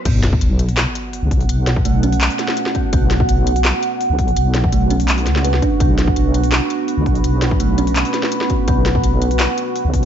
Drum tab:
CC |x---------------|----------------|----------------|----------------|
HH |x-x-x-xox-x-o-oo|x-x-x-xoxox-x-x-|x-x-x-xox-x-o-oo|x-x-x-xoxox-x-x-|
CP |--------x-------|--------x--x----|--------x-------|--------x--x----|
SD |--o-----o-------|--o-------oo-o--|--o-----o-------|--o-------oo-o--|
BD |o--o----------o-|---o----------o-|o--o----------o-|---o----------o-|

CC |----------------|----------------|----------------|
HH |x-x-x-xox-x-o-oo|x-x-x-xoxox-x-x-|x-x-x-xox-x-o-o-|
CP |--------x-------|--------x--x----|--------x-------|
SD |--o-----o-------|--o-------oo-o--|--o-----o-------|
BD |o--o----------o-|---o----------o-|o--o----------o-|